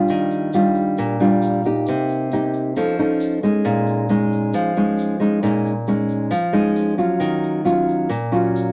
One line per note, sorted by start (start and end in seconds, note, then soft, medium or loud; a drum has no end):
0.00 0.49 G3 soft
0.00 0.50 D4 medium
0.00 0.50 F4 medium
0.08 0.96 D#3 medium
0.08 shaker medium
0.31 shaker soft
0.53 1.17 G3 soft
0.53 1.17 D4 medium
0.53 1.17 F4 medium
0.53 shaker medium
0.75 shaker soft
0.97 1.85 A#2 medium
0.97 shaker medium
1.20 1.61 G3 medium
1.20 1.61 D4 medium
1.20 1.62 F4 medium
1.20 shaker soft
1.42 shaker medium
1.64 2.28 A#3 medium
1.64 2.28 D#4 medium
1.64 2.29 G4 medium
1.64 shaker soft
1.86 2.74 C3 medium
1.86 shaker medium
2.09 shaker soft
2.31 2.75 A#3 medium
2.31 2.75 D#4 medium
2.31 2.75 G4 medium
2.31 shaker medium
2.53 shaker soft
2.76 3.43 F3 medium
2.76 2.95 C#4 soft
2.76 2.95 D#4 medium
2.76 2.95 A4 medium
2.76 shaker medium
2.99 3.40 C#4 medium
2.99 3.40 D#4 medium
2.99 3.40 A4 medium
2.99 shaker soft
3.20 shaker medium
3.43 4.06 G#3 medium
3.43 4.07 C#4 soft
3.43 4.07 D#4 medium
3.43 shaker soft
3.65 4.52 A#2 medium
3.65 shaker medium
3.87 shaker soft
4.09 4.73 G#3 medium
4.09 4.73 C#4 medium
4.09 4.73 D#4 medium
4.09 shaker soft
4.31 shaker soft
4.53 5.41 F3 medium
4.53 shaker medium
4.75 5.18 G#3 medium
4.75 5.18 C#4 medium
4.75 5.18 D#4 medium
4.75 shaker soft
4.98 shaker medium
5.20 5.39 G#3 medium
5.20 5.39 C#4 soft
5.20 5.40 D#4 medium
5.20 shaker soft
5.43 6.30 A#2 medium
5.43 5.72 G#3 medium
5.43 5.72 C#4 soft
5.43 5.72 D#4 soft
5.43 shaker medium
5.65 shaker soft
5.87 6.32 G#3 soft
5.87 6.32 C#4 medium
5.87 6.32 D#4 medium
5.87 shaker soft
6.09 shaker soft
6.31 7.18 F3 medium
6.31 shaker medium
6.53 6.95 G#3 medium
6.53 6.95 C#4 soft
6.53 6.95 D#4 medium
6.53 shaker soft
6.76 shaker medium
6.98 7.62 F#3 soft
6.98 7.62 C#4 medium
6.98 7.62 F4 medium
6.98 shaker soft
7.20 8.07 D#3 medium
7.20 shaker medium
7.43 shaker soft
7.65 8.10 F#3 medium
7.65 8.10 C#4 medium
7.65 8.10 F4 medium
7.65 shaker medium
7.88 shaker soft
8.09 8.72 A#2 medium
8.09 shaker medium
8.32 8.72 F#3 medium
8.32 8.72 C#4 medium
8.32 8.72 F4 medium
8.32 shaker soft
8.56 shaker medium